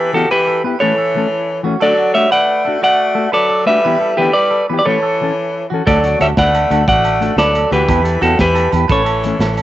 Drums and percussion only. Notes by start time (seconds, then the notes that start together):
5.87 kick, closed hi-hat, low agogo
6.04 closed hi-hat
6.21 closed hi-hat, low agogo
6.37 kick, snare, closed hi-hat
6.54 closed hi-hat, low agogo
6.71 closed hi-hat, low agogo
6.88 kick, closed hi-hat
7.04 closed hi-hat, low agogo
7.22 closed hi-hat
7.38 snare, closed hi-hat, low agogo
7.55 closed hi-hat, low agogo
7.72 closed hi-hat
7.88 kick, closed hi-hat, low agogo
8.05 closed hi-hat
8.22 closed hi-hat, low agogo
8.39 kick, snare, closed hi-hat
8.55 closed hi-hat, low agogo
8.72 closed hi-hat, low agogo
8.90 kick, closed hi-hat
9.06 closed hi-hat, low agogo
9.24 closed hi-hat
9.40 snare, closed hi-hat, low agogo
9.57 closed hi-hat, low agogo